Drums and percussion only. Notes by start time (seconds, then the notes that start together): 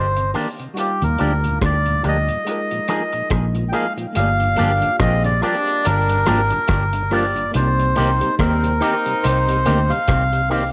0.17 closed hi-hat
0.34 open hi-hat
0.60 closed hi-hat
0.77 closed hi-hat
1.02 closed hi-hat
1.18 closed hi-hat
1.44 closed hi-hat
1.62 kick, cross-stick, closed hi-hat
1.86 closed hi-hat
2.04 closed hi-hat
2.29 closed hi-hat
2.47 closed hi-hat
2.71 closed hi-hat
2.88 cross-stick, closed hi-hat
3.13 closed hi-hat
3.30 kick, cross-stick, closed hi-hat
3.55 closed hi-hat
3.73 closed hi-hat
3.98 closed hi-hat
4.15 closed hi-hat
4.40 closed hi-hat
4.56 closed hi-hat
4.82 closed hi-hat
5.00 kick, cross-stick, closed hi-hat
5.25 closed hi-hat
5.43 closed hi-hat
5.67 closed hi-hat
5.85 closed hi-hat
6.09 closed hi-hat
6.26 cross-stick, closed hi-hat
6.50 closed hi-hat
6.68 kick, cross-stick, closed hi-hat
6.93 closed hi-hat
7.11 open hi-hat
7.36 closed hi-hat
7.54 closed hi-hat
7.79 closed hi-hat
7.96 closed hi-hat
8.21 closed hi-hat
8.39 kick, cross-stick, closed hi-hat
8.64 closed hi-hat
8.82 closed hi-hat
9.06 closed hi-hat
9.24 closed hi-hat
9.49 closed hi-hat
9.66 closed hi-hat
9.90 closed hi-hat
10.08 kick, cross-stick, closed hi-hat
10.33 closed hi-hat
10.50 open hi-hat